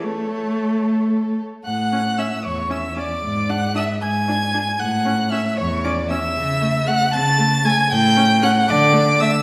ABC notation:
X:1
M:6/8
L:1/8
Q:3/8=77
K:A
V:1 name="Violin"
c4- c z | f'2 e' c' e' d'- | d' f' e' g'3 | f'2 e' c' d' e'- |
e'2 f' a'2 g' | =g'2 f' d'2 e' |]
V:2 name="Violin"
A4- A z | f2 e c e d- | d f e g3 | f2 e c d e- |
e2 f a2 g | =g2 f d2 e |]
V:3 name="Viola"
A,4- A, z | z C C z C C | z D D z D D | z C C z C C |
z A, A, z A, A, | z C C z A, A, |]
V:4 name="Cello" clef=bass
A,4- A, z | A,,3 E,,3 | G,,3 G,,3 | A,,3 E,,3 |
C,3 C,3 | A,,3 D,3 |]